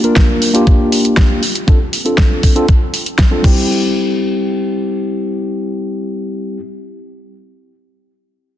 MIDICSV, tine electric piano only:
0, 0, Header, 1, 2, 480
1, 0, Start_track
1, 0, Tempo, 504202
1, 1596, Time_signature, 4, 2, 24, 8
1, 8165, End_track
2, 0, Start_track
2, 0, Title_t, "Tine electric piano"
2, 0, Program_c, 0, 4
2, 32, Note_on_c, 0, 58, 72
2, 35, Note_on_c, 0, 62, 65
2, 38, Note_on_c, 0, 65, 65
2, 42, Note_on_c, 0, 70, 80
2, 485, Note_off_c, 0, 58, 0
2, 486, Note_off_c, 0, 62, 0
2, 488, Note_off_c, 0, 65, 0
2, 490, Note_off_c, 0, 70, 0
2, 507, Note_on_c, 0, 58, 90
2, 514, Note_on_c, 0, 62, 82
2, 520, Note_on_c, 0, 65, 84
2, 527, Note_on_c, 0, 67, 99
2, 1337, Note_off_c, 0, 58, 0
2, 1340, Note_off_c, 0, 62, 0
2, 1343, Note_off_c, 0, 65, 0
2, 1347, Note_off_c, 0, 67, 0
2, 1591, Note_on_c, 0, 60, 69
2, 1595, Note_on_c, 0, 62, 61
2, 1598, Note_on_c, 0, 65, 62
2, 1602, Note_on_c, 0, 69, 79
2, 1686, Note_off_c, 0, 60, 0
2, 1688, Note_off_c, 0, 62, 0
2, 1689, Note_off_c, 0, 65, 0
2, 1691, Note_off_c, 0, 69, 0
2, 1951, Note_on_c, 0, 60, 64
2, 1954, Note_on_c, 0, 62, 58
2, 1956, Note_on_c, 0, 65, 62
2, 1959, Note_on_c, 0, 69, 73
2, 2405, Note_off_c, 0, 60, 0
2, 2406, Note_off_c, 0, 62, 0
2, 2407, Note_off_c, 0, 65, 0
2, 2409, Note_off_c, 0, 69, 0
2, 2430, Note_on_c, 0, 60, 90
2, 2432, Note_on_c, 0, 62, 81
2, 2436, Note_on_c, 0, 65, 78
2, 2439, Note_on_c, 0, 69, 98
2, 2525, Note_off_c, 0, 60, 0
2, 2526, Note_off_c, 0, 62, 0
2, 2528, Note_off_c, 0, 65, 0
2, 2529, Note_off_c, 0, 69, 0
2, 3149, Note_on_c, 0, 60, 76
2, 3152, Note_on_c, 0, 62, 70
2, 3156, Note_on_c, 0, 65, 69
2, 3159, Note_on_c, 0, 69, 84
2, 3257, Note_off_c, 0, 60, 0
2, 3259, Note_on_c, 0, 55, 74
2, 3269, Note_on_c, 0, 60, 70
2, 3274, Note_off_c, 0, 62, 0
2, 3276, Note_off_c, 0, 65, 0
2, 3277, Note_off_c, 0, 69, 0
2, 3288, Note_on_c, 0, 67, 81
2, 6254, Note_off_c, 0, 55, 0
2, 6264, Note_off_c, 0, 60, 0
2, 6283, Note_off_c, 0, 67, 0
2, 8165, End_track
0, 0, End_of_file